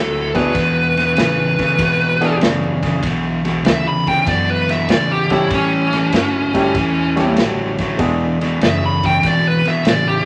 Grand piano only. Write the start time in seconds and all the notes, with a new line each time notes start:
0.34 B3 D4 E4 G#4
2.20 B3 D4 E4 G#4
5.30 G3 C#4 E4 G4 A4
6.54 G3 A3 C#4 E4 G4
7.16 G3 A3 C#4 E4 G4
7.98 G#3 B3 D4 E4 G#4